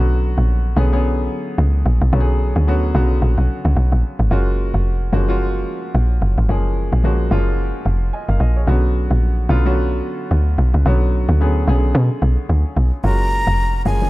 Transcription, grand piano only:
0.00 0.62 D3 medium
0.00 0.62 F#3 medium
0.00 0.62 B3 medium
0.00 0.62 C#4 medium
0.00 0.62 F#4 loud
0.76 0.89 D3 medium
0.76 0.89 F#3 medium
0.76 0.89 B3 medium
0.76 0.89 C#4 medium
0.76 0.90 G#4 loud
0.92 1.79 D3 medium
0.92 1.79 F#3 medium
0.92 1.79 B3 medium
0.92 1.79 C#4 medium
0.92 1.79 G#4 loud
2.13 2.58 D3 medium
2.13 2.58 F#3 medium
2.13 2.58 B3 medium
2.13 2.59 C#4 medium
2.13 2.21 F#4 medium
2.20 2.62 G#4 loud
2.67 2.90 D3 medium
2.67 2.90 F#3 medium
2.67 2.90 B3 medium
2.67 2.90 C#4 medium
2.67 2.91 F#4 loud
2.94 3.02 C#3 medium
2.94 3.83 F#3 medium
2.94 3.83 B3 medium
2.94 3.83 C#4 medium
2.94 3.83 F#4 loud
3.01 3.86 D3 medium
4.31 4.98 G#3 medium
4.31 4.98 A#3 medium
4.31 4.99 C#4 medium
4.31 4.98 F4 medium
4.31 4.99 F#4 loud
5.13 5.25 F3 medium
5.13 5.25 G#3 medium
5.13 5.26 A#3 medium
5.13 5.26 C#4 medium
5.13 5.26 F#4 loud
5.29 6.15 G#3 medium
5.29 6.15 A#3 medium
5.29 6.15 C#4 medium
5.29 6.15 F4 loud
5.29 6.16 F#4 loud
6.49 6.95 F3 medium
6.49 6.95 G#3 medium
6.49 6.95 A#3 medium
6.49 6.95 C#4 medium
6.49 6.95 G#4 loud
7.04 7.26 F3 medium
7.04 7.27 G#3 medium
7.04 7.27 A#3 medium
7.04 7.27 C#4 medium
7.04 7.27 F#4 loud
7.31 8.19 F3 medium
7.31 8.19 G#3 medium
7.31 8.19 A#3 medium
7.31 8.20 C#4 medium
7.31 8.20 F4 loud
8.13 8.28 D#5 medium
8.13 8.28 G#5 medium
8.29 8.40 A#4 medium
8.29 8.40 F5 medium
8.41 8.56 A#4 medium
8.41 8.55 D#5 medium
8.56 8.82 G#4 medium
8.56 8.82 C#5 medium
8.67 9.35 D3 medium
8.67 9.35 F#3 medium
8.67 9.35 B3 medium
8.67 9.35 C#4 medium
8.67 9.35 F#4 loud
9.49 9.62 D3 medium
9.49 9.62 F#3 medium
9.49 9.62 B3 medium
9.49 9.62 C#4 medium
9.49 9.62 F4 loud
9.65 10.51 D3 medium
9.65 10.52 F#3 medium
9.65 10.52 B3 medium
9.65 10.52 C#4 medium
9.65 10.52 F#4 loud
10.86 11.31 D3 medium
10.86 11.31 F#3 medium
10.86 11.31 B3 medium
10.86 11.31 C#4 medium
10.86 11.32 F#4 loud
11.40 11.63 D3 medium
11.40 11.63 F#3 medium
11.40 11.63 B3 medium
11.40 11.63 C#4 medium
11.40 11.63 G#4 loud
11.68 11.75 C#3 medium
11.68 12.56 F#3 medium
11.68 12.56 B3 medium
11.68 12.56 C#4 medium
11.68 12.56 G#4 loud
11.74 12.59 D3 medium
13.04 13.71 G#3 medium
13.04 13.71 A#3 medium
13.04 13.71 C#4 medium
13.04 13.71 F4 medium
13.04 13.71 F#4 medium
13.86 13.98 F3 medium
13.86 13.98 G#3 medium
13.86 13.99 A#3 medium
13.86 13.99 C#4 medium
13.86 13.99 G#4 medium
14.02 14.10 F3 medium
14.02 14.10 G#3 medium
14.02 14.10 A#3 medium
14.02 14.10 C#4 medium
14.02 14.10 G#4 medium

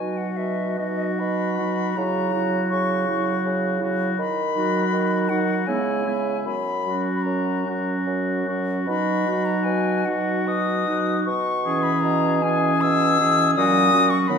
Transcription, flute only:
0.00 0.19 G#5 soft
0.17 0.38 F#5 soft
0.37 0.79 E5 soft
0.77 1.21 D#5 soft
1.19 1.99 B5 medium
1.97 2.69 A#5 medium
2.69 3.43 C#6 medium
4.18 5.30 B5 medium
5.29 5.68 F#5 medium
5.67 6.44 G#5 medium
6.44 7.15 B5 medium
7.16 7.24 B5 soft
7.23 8.05 A#5 soft
8.86 9.47 B5 medium
9.45 9.65 A#5 medium
9.64 10.07 G#5 medium
10.05 10.49 F#5 medium
10.47 11.24 D#6 medium
11.25 11.84 C#6 medium
11.83 12.02 B5 medium
12.01 12.44 A#5 medium
12.42 12.83 G#5 medium
12.81 13.55 E6 medium
13.55 14.12 D#6 loud
14.10 14.29 C#6 medium
14.28 14.38 B5 medium

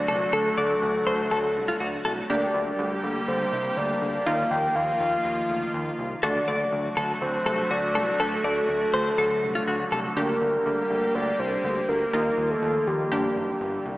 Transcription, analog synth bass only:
0.08 0.26 C2 medium
0.33 0.50 D2 loud
0.58 0.75 D2 loud
0.82 0.99 D2 loud
1.07 1.24 D2 loud
1.31 1.57 D2 loud
1.56 1.73 C2 medium
1.81 1.98 D2 loud
2.05 2.22 C2 loud
2.30 2.47 D2 loud
2.54 2.71 D2 loud
2.79 2.96 D2 loud
3.03 3.21 D2 medium
3.28 3.45 D2 loud
3.53 3.70 C2 loud
3.77 3.94 D2 loud
4.02 4.19 D2 loud
4.26 4.44 D#2 loud
4.51 4.68 D#2 loud
4.76 4.93 D#2 loud
5.00 5.17 D#2 loud
5.25 5.42 D#2 loud
5.49 5.67 D2 medium
5.74 5.91 D#2 loud
5.99 6.16 C2 medium
6.23 6.40 D2 loud
6.48 6.65 D2 loud
6.72 6.89 D2 loud
6.97 7.14 D2 loud
7.21 7.39 D2 loud
7.46 7.63 C2 medium
7.71 7.97 D2 loud
7.95 8.12 C2 medium
8.20 8.37 D2 loud
8.44 8.62 D2 loud
8.69 8.86 D2 loud
8.94 9.11 D2 loud
9.18 9.44 D2 loud
9.43 9.60 C2 medium
9.68 9.85 D2 loud
9.92 10.09 C2 loud
10.17 10.34 D2 loud
10.41 10.58 D2 loud
10.66 10.83 D2 loud
10.90 11.07 D2 medium
11.15 11.32 D2 loud
11.39 11.57 C2 loud
11.64 11.81 D2 loud
11.89 12.06 D2 medium
12.13 12.31 D#2 loud
12.38 12.55 D#2 loud
12.62 12.80 D#2 loud
12.87 13.04 D#2 loud
13.12 13.29 G1 loud
13.36 13.53 F#1 medium
13.61 13.78 G1 loud
13.85 13.98 C2 medium

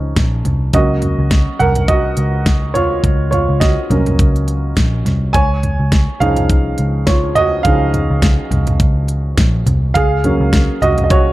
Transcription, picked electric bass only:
0.00 0.13 C#2 medium
0.17 0.44 A#1 medium
0.45 0.72 C2 medium
0.74 1.16 C#2 medium
1.19 1.46 C#2 medium
1.60 2.14 C2 medium
2.18 3.00 C#2 medium
3.04 3.46 C#2 loud
3.49 3.76 C#2 medium
3.90 4.17 C2 medium
4.19 4.73 C#2 medium
4.77 5.04 A#1 medium
5.05 5.32 C2 medium
5.35 5.76 C#2 loud
5.79 6.06 C#2 medium
6.21 6.74 C2 medium
6.79 7.61 C#2 medium
7.65 8.07 C#2 loud
8.10 8.37 C#2 medium
8.51 8.78 C2 medium
8.80 9.34 C#2 loud
9.38 9.64 A#1 medium
9.67 9.93 C2 medium
9.95 10.37 C#2 loud
10.40 10.67 C#2 loud
10.82 11.33 C2 medium

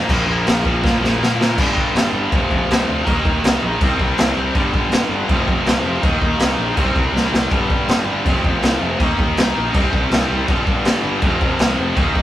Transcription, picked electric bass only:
0.09 0.26 A#1 medium
0.27 0.45 A#1 medium
0.46 0.82 A#1 medium
0.83 1.00 A#2 loud
1.01 1.18 A#1 loud
1.19 1.55 A#2 loud
1.58 1.71 G1 loud
1.77 1.89 G1 medium
1.94 2.07 G1 loud
2.13 2.26 G1 medium
2.32 2.45 F1 loud
2.51 2.63 F1 loud
2.69 2.82 C2 loud
2.88 3.00 D2 medium
3.07 3.20 D#2 loud
3.25 3.38 D#2 medium
3.44 3.56 C2 loud
3.62 3.75 A#1 loud
3.81 3.93 C2 loud
4.00 4.12 C2 medium
4.18 4.31 C2 medium
4.37 4.49 C2 medium
4.55 4.67 G1 loud
4.74 4.86 G1 medium
4.90 5.03 G1 medium
5.09 5.22 G1 medium
5.29 5.42 F1 loud
5.47 5.60 F1 medium
5.66 5.78 C2 loud
5.84 5.97 F1 medium
6.03 6.16 D#2 loud
6.21 6.34 D#2 medium
6.41 6.54 C2 medium
6.58 6.71 A#1 medium
6.77 6.90 C2 loud
6.96 7.08 C2 loud
7.14 7.27 C2 loud
7.32 7.45 C2 medium
7.51 7.64 G1 loud
7.70 7.82 G1 medium
7.88 8.01 G1 medium
8.06 8.19 G1 medium
8.25 8.38 F1 loud
8.44 8.57 F1 medium
8.62 8.75 C2 loud
8.81 8.94 F1 loud
9.00 9.12 D#2 loud
9.18 9.31 D#2 medium
9.38 9.50 C2 medium
9.57 9.69 A#1 loud
9.74 9.87 C2 loud
9.93 10.06 C2 medium
10.11 10.24 C2 loud
10.30 10.43 C2 medium
10.48 10.61 G1 loud
10.67 10.80 G1 medium
10.85 10.98 G1 loud
11.04 11.17 G1 medium
11.22 11.35 F1 loud
11.41 11.54 F1 loud
11.60 11.73 C2 loud
11.79 11.91 F1 medium
11.97 12.10 D#2 loud
12.16 12.22 D#2 loud

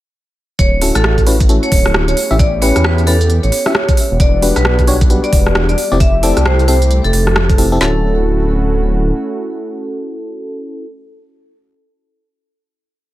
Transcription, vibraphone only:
0.59 0.82 C#5 medium
0.95 1.18 A4 medium
1.63 1.91 C#5 medium
2.08 2.31 C#5 medium
2.39 2.56 D5 medium
2.62 2.79 C#5 medium
2.84 3.01 B4 medium
3.07 3.30 A4 medium
3.43 4.13 C#5 medium
4.20 4.42 D5 medium
4.56 4.79 B4 medium
5.24 5.52 D5 medium
5.69 5.92 D5 medium
6.00 6.17 E5 medium
6.23 6.40 D5 medium
6.45 6.62 C5 medium
6.68 6.91 C5 medium
7.04 7.74 A4 medium
7.81 10.86 A4 medium

